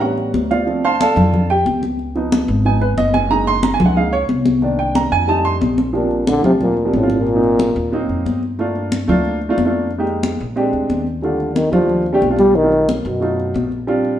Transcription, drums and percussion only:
0.01 high conga
0.18 high conga
0.34 high conga
0.51 high conga
0.67 high conga
0.84 high conga
1.01 high conga
1.17 high conga, low conga
1.34 high conga, low conga
1.50 high conga
1.66 high conga
1.83 high conga
1.99 high conga
2.16 high conga
2.32 high conga
2.49 high conga
2.65 high conga
2.81 high conga
2.98 high conga
3.14 high conga
3.31 high conga
3.47 high conga
3.63 high conga
3.80 high conga, low conga
3.96 high conga
4.13 high conga
4.29 high conga
4.46 high conga
4.62 high conga
4.79 high conga
4.95 high conga
5.12 high conga
5.28 high conga
5.45 high conga
5.62 high conga
5.78 high conga
5.95 high conga
6.11 high conga
6.27 high conga
6.44 low conga
6.61 high conga, low conga
6.77 high conga
6.93 high conga
7.10 high conga
7.26 high conga
7.44 high conga
7.59 high conga
7.76 high conga
7.93 high conga
8.09 high conga
8.26 high conga
8.43 high conga
8.59 high conga
8.76 high conga
8.92 high conga
9.09 low conga
9.25 high conga
9.42 high conga
9.58 high conga
9.91 high conga
10.07 high conga
10.23 high conga
10.40 high conga
10.57 high conga
10.73 high conga
10.90 high conga
11.07 high conga
11.24 high conga
11.40 high conga
11.56 high conga
11.73 low conga
11.89 high conga
12.06 high conga
12.22 high conga
12.39 high conga
12.55 high conga
12.72 high conga
12.89 high conga
13.06 high conga
13.22 high conga
13.40 high conga
13.56 high conga
13.72 high conga
13.88 high conga
14.05 high conga

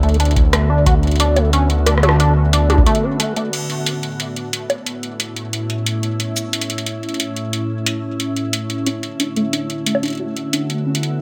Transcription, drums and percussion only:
0.03 closed hi-hat
0.09 closed hi-hat
0.14 closed hi-hat
0.20 closed hi-hat
0.25 closed hi-hat
0.31 closed hi-hat
0.36 kick, closed hi-hat
0.53 cross-stick, closed hi-hat
0.86 kick, closed hi-hat
1.03 closed hi-hat
1.07 closed hi-hat
1.11 closed hi-hat
1.16 closed hi-hat
1.20 closed hi-hat
1.36 closed hi-hat, high bongo
1.53 closed hi-hat
1.70 closed hi-hat
1.86 cross-stick, closed hi-hat, high bongo
1.98 cross-stick
2.03 closed hi-hat, high tom, high bongo
2.09 cross-stick
2.20 closed hi-hat
2.53 closed hi-hat
2.70 closed hi-hat, high tom
2.78 kick
2.86 closed hi-hat
2.95 closed hi-hat
3.20 closed hi-hat
3.36 closed hi-hat
3.53 closed hi-hat, crash
3.70 closed hi-hat
3.86 closed hi-hat
4.03 closed hi-hat
4.20 closed hi-hat
4.36 closed hi-hat
4.53 closed hi-hat
4.70 closed hi-hat, high bongo
4.86 closed hi-hat
5.03 closed hi-hat
5.20 closed hi-hat
5.36 closed hi-hat
5.53 closed hi-hat
5.70 closed hi-hat
5.86 closed hi-hat
6.03 closed hi-hat
6.20 closed hi-hat
6.36 closed hi-hat, cabasa
6.53 closed hi-hat
6.61 closed hi-hat
6.70 closed hi-hat
6.78 closed hi-hat
6.86 closed hi-hat
7.03 closed hi-hat
7.09 closed hi-hat
7.14 closed hi-hat
7.20 closed hi-hat
7.36 closed hi-hat
7.53 closed hi-hat
7.86 closed hi-hat
8.20 closed hi-hat
8.36 closed hi-hat
8.53 closed hi-hat
8.70 closed hi-hat
8.86 closed hi-hat
9.03 closed hi-hat
9.20 closed hi-hat
9.36 closed hi-hat
9.53 closed hi-hat
9.70 closed hi-hat
9.86 closed hi-hat
9.95 high bongo
10.03 closed hi-hat
10.06 closed hi-hat
10.08 closed hi-hat
10.10 closed hi-hat
10.13 closed hi-hat
10.15 closed hi-hat
10.17 closed hi-hat
10.37 closed hi-hat
10.53 closed hi-hat
10.70 closed hi-hat
10.95 closed hi-hat
11.03 closed hi-hat

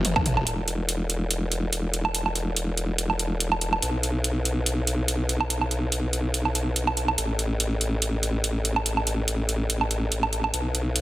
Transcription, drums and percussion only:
0.05 closed hi-hat, mid tom
0.16 kick, mid tom, low woodblock
0.26 closed hi-hat, mid tom
0.37 mid tom, low woodblock
0.47 closed hi-hat
0.68 closed hi-hat
0.89 closed hi-hat
1.10 closed hi-hat
1.31 closed hi-hat
1.52 closed hi-hat
1.73 closed hi-hat
1.94 closed hi-hat
2.05 low woodblock
2.15 closed hi-hat
2.26 low woodblock
2.36 closed hi-hat
2.56 closed hi-hat
2.77 closed hi-hat
2.98 closed hi-hat
3.10 low woodblock
3.19 closed hi-hat
3.40 closed hi-hat
3.52 low woodblock
3.61 closed hi-hat
3.73 low woodblock
3.82 closed hi-hat
4.03 closed hi-hat
4.24 closed hi-hat
4.45 closed hi-hat
4.66 closed hi-hat
4.87 closed hi-hat
5.08 closed hi-hat
5.29 closed hi-hat
5.41 low woodblock
5.50 closed hi-hat
5.61 low woodblock
5.71 closed hi-hat
5.92 closed hi-hat
6.13 closed hi-hat
6.34 closed hi-hat
6.45 low woodblock
6.55 closed hi-hat
6.76 closed hi-hat
6.87 low woodblock
6.97 closed hi-hat
7.08 low woodblock
7.18 closed hi-hat
7.39 closed hi-hat
7.60 closed hi-hat
7.81 closed hi-hat
8.02 closed hi-hat
8.23 closed hi-hat
8.44 closed hi-hat
8.65 closed hi-hat
8.76 low woodblock
8.86 closed hi-hat
8.97 low woodblock
9.07 closed hi-hat
9.28 closed hi-hat
9.49 closed hi-hat
9.70 closed hi-hat
9.81 low woodblock
9.91 closed hi-hat
10.12 closed hi-hat
10.23 low woodblock
10.33 closed hi-hat
10.44 low woodblock
10.54 closed hi-hat
10.75 closed hi-hat
10.96 closed hi-hat

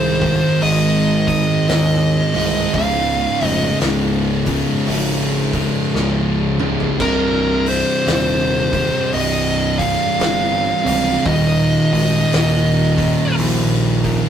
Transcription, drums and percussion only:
0.22 kick, open hi-hat
0.61 open hi-hat
1.28 kick, open hi-hat
1.68 snare, open hi-hat
2.34 open hi-hat
2.73 kick, open hi-hat
3.40 open hi-hat
3.80 snare, open hi-hat
4.46 kick, open hi-hat
4.86 open hi-hat
5.53 kick, open hi-hat
5.95 snare
6.60 mid tom
6.80 floor tom
7.00 kick, crash
7.66 open hi-hat
8.06 snare, open hi-hat
8.73 kick, open hi-hat
9.13 open hi-hat
9.79 kick, open hi-hat
10.19 snare, open hi-hat
10.86 open hi-hat
11.26 kick, open hi-hat
11.93 open hi-hat
12.32 snare, open hi-hat
12.98 kick, open hi-hat
13.38 open hi-hat
14.04 kick, open hi-hat

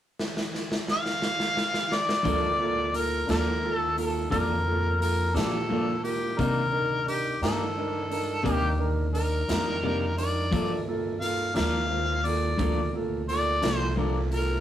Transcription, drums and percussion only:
0.19 snare
0.37 snare
0.54 snare
0.72 snare
0.88 snare
1.06 snare
1.22 snare
1.40 snare
1.57 snare
1.74 snare
1.92 snare
2.09 snare
2.25 kick, closed hi-hat
2.94 closed hi-hat
3.29 snare, closed hi-hat
3.98 closed hi-hat
4.32 kick, closed hi-hat
5.02 closed hi-hat
5.36 snare, closed hi-hat
6.05 closed hi-hat
6.39 kick, closed hi-hat
7.08 closed hi-hat
7.43 snare, closed hi-hat
8.11 closed hi-hat
8.46 kick, closed hi-hat
9.15 closed hi-hat
9.49 snare, closed hi-hat
10.18 closed hi-hat
10.53 kick, closed hi-hat
11.22 closed hi-hat
11.56 snare, closed hi-hat
12.25 closed hi-hat
12.59 kick, closed hi-hat
13.29 closed hi-hat
13.62 snare, closed hi-hat
14.32 closed hi-hat

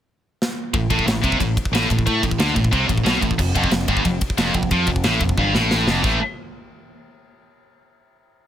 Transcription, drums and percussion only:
0.42 snare
0.74 kick, ride
0.90 kick, ride
0.99 kick
1.08 snare, ride
1.24 kick, ride
1.32 kick
1.40 kick, ride
1.57 kick, ride
1.65 kick
1.75 snare, ride
1.90 kick, ride
1.99 kick
2.07 kick, ride
2.23 kick, ride
2.31 kick
2.40 snare, ride
2.56 kick, ride
2.64 kick
2.73 kick, ride
2.89 kick, ride
2.98 kick
3.06 snare, ride
3.22 kick, ride
3.31 kick
3.39 kick, crash
3.55 kick, ride
3.64 kick
3.71 snare, ride
3.88 kick, ride
3.97 kick
4.05 kick, ride
4.21 kick, ride
4.30 kick
4.38 snare, ride
4.54 kick, ride
4.63 kick
4.71 kick, ride
4.87 kick, ride
4.96 kick
5.04 snare, ride
5.20 kick, ride
5.29 kick
5.38 kick, high tom
5.55 snare
5.71 snare
5.88 snare
6.04 kick, crash

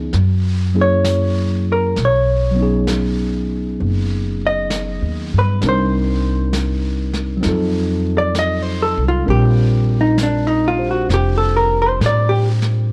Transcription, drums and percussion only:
0.13 brush sweep, snare
1.05 brush sweep, snare, hi-hat pedal
1.96 brush sweep, snare
2.87 brush sweep, snare, hi-hat pedal
3.79 brush sweep
4.70 brush sweep, snare, hi-hat pedal
5.61 brush sweep, snare
6.53 brush sweep, snare, hi-hat pedal
7.14 snare
7.43 brush sweep, snare
8.35 brush sweep, snare, hi-hat pedal
9.27 brush sweep
10.18 brush sweep, snare, hi-hat pedal
11.10 brush sweep, snare
12.01 brush sweep, snare, hi-hat pedal
12.62 snare

